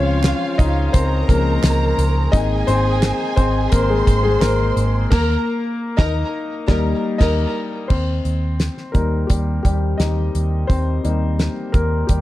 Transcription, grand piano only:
Already playing: F3 G#3 C4 C#4 C5 C#5
0.58 D#4 D#5
0.93 C4 C5
1.28 F3 G#3 A#3 C#4 A#4
2.32 G#3 A#3 C4 D#4 D#5
2.67 C4 C5
3.36 C4 C5
3.71 A#3 A#4
3.88 G#3 G#4
4.23 G#3 G#4
4.41 A#3 A#4
5.10 A#3 A#4
5.97 D#4 D#5
6.68 G3 A#3 D#4
7.18 D#4 D#5
7.88 C4 C5
8.92 G3 A#3 D#4 A#4
9.27 G3 G4
9.63 G3 G4
9.98 D#4 D#5
10.67 C4 C5
11.04 G3 A#3 D#4
11.72 A#3 A#4
12.07 G3 G4

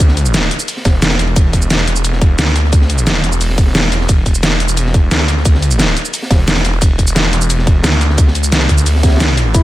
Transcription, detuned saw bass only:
Already playing: D2
0.85 E1
1.19 E1
1.36 E1
1.87 E1
2.39 D2
3.24 E1
4.09 E1
4.60 E1
5.11 D2
6.31 E1
6.65 E1
6.82 E1
7.33 E1
7.84 D2
8.43 C#2
8.69 D2
9.55 E1

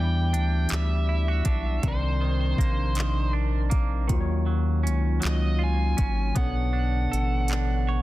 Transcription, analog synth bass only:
Already playing: E2
0.34 D2
0.72 D2
1.46 B1
1.84 C2
2.59 A#1
4.10 D#2
4.87 C#2
5.24 C#2
5.99 G#1
6.37 B1
7.13 A1

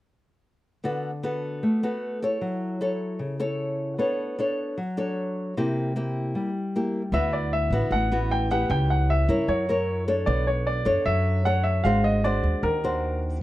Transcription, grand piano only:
7.14 E5
7.33 D5
7.53 E5
7.92 F#5
8.31 G5
8.51 F#5
8.71 G5
8.90 F#5
9.10 E5
9.48 C#5
10.26 D5
10.47 C#5
10.67 D5
11.06 E5
11.45 F#5
11.64 E5
11.84 F5
12.04 D#5
12.24 D5
12.63 A#4

